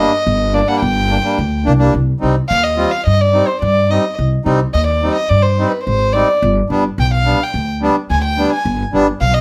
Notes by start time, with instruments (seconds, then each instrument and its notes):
Already playing: accordion G3 A#3 D4, violin D#5
0.27 upright bass G1
0.53 accordion A#3 D4, violin D5
0.67 accordion G3 A#3 D4, violin F#5
0.81 upright bass G1, violin G5
1.10 accordion A#3 D4
1.24 accordion G3 A#3 D4
1.38 upright bass D2
1.65 upright bass C2, accordion A#3 D4
1.79 accordion G3 A#3 D4
1.95 upright bass C2
2.20 upright bass C2, accordion G3 C4 D#4
2.49 upright bass D#2, violin F5
2.64 violin D#5
2.77 accordion G3 C4 F4
2.91 violin F5
3.06 upright bass G2, violin D#5
3.20 violin D5
3.33 accordion G3 C4 D#4
3.48 violin C5
3.62 upright bass G2, violin D5
3.90 accordion G3 C4 D#4, violin D#5
4.19 upright bass C2
4.45 upright bass C2, accordion G3 C4 D#4
4.74 upright bass D#2, violin D#5
4.87 violin D5
5.03 accordion G3 C4 D#4
5.15 violin D#5
5.29 upright bass G2, violin D5
5.42 violin C5
5.58 accordion G3 C4 D#4
5.69 violin B4
5.84 upright bass G#1, violin C5
6.13 accordion G3 C4 D#4, violin D5
6.42 upright bass G1
6.70 upright bass G1, accordion G3 B3 D4
6.98 upright bass B1, violin G5
7.14 violin F5
7.25 accordion G3 B3 D4
7.43 violin G5
7.54 upright bass D2
7.81 accordion G3 B3 D4
8.10 upright bass D2, violin G#5
8.25 violin G5
8.38 accordion G3 B3 D4
8.53 violin G#5
8.65 upright bass G1
8.93 upright bass G1, accordion G3 B3 D4
9.21 upright bass B1, violin F5
9.34 violin D#5